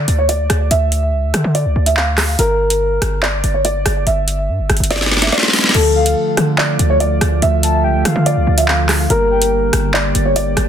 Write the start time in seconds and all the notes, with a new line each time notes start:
Already playing: D5
0.08 D2, closed hi-hat
0.18 C#5
0.29 D5, closed hi-hat
0.50 D2, cross-stick, closed hi-hat
0.71 D2 E5, closed hi-hat
0.92 closed hi-hat
1.13 C#2
1.23 D2
1.34 D3, cross-stick, closed hi-hat
1.44 D3
1.55 D5, closed hi-hat
1.65 C#2
1.76 D2
1.86 E5, closed hi-hat
1.97 clap
2.18 cross-stick, clap, open hi-hat
2.39 G1 A#4, closed hi-hat
2.70 closed hi-hat
3.02 G1, cross-stick, closed hi-hat
3.23 D5, clap
3.44 G1, closed hi-hat
3.54 C#5
3.65 D5, closed hi-hat
3.86 G1, cross-stick, closed hi-hat
4.07 G1 E5, closed hi-hat
4.28 closed hi-hat
4.49 G2
4.59 G1
4.70 G1, cross-stick, closed hi-hat
4.77 G1, closed hi-hat
4.84 closed hi-hat
4.91 D5, snare, closed hi-hat
4.96 snare
5.01 snare
5.06 snare
5.12 snare
5.17 snare
5.22 E5, snare, closed hi-hat
5.27 snare
5.32 D5, snare
5.38 snare
5.43 snare
5.48 snare
5.53 snare, open hi-hat
5.59 snare
5.64 snare
5.69 snare
5.74 D2 D3 F3 A3 F4 A4, closed hi-hat, crash
5.95 F5
6.06 closed hi-hat
6.37 D3, cross-stick, closed hi-hat
6.58 D5, clap
6.79 D2, closed hi-hat
6.90 C#5
7.00 D5, closed hi-hat
7.21 D2, cross-stick, closed hi-hat
7.42 D2 E5, closed hi-hat
7.63 A5, closed hi-hat
7.84 C#2 G5
7.95 D2
8.05 D3 F5, cross-stick, closed hi-hat
8.16 D3
8.26 D5, closed hi-hat
8.37 C#2
8.47 D2
8.58 E5, closed hi-hat
8.68 clap
8.89 cross-stick, clap, open hi-hat
9.10 G1 G3 A#3 G4 A#4, closed hi-hat
9.31 G5
9.42 closed hi-hat
9.73 G1, cross-stick, closed hi-hat
9.94 D5, clap
10.15 G1, closed hi-hat
10.25 C#5
10.36 D5, closed hi-hat
10.57 G1, cross-stick, closed hi-hat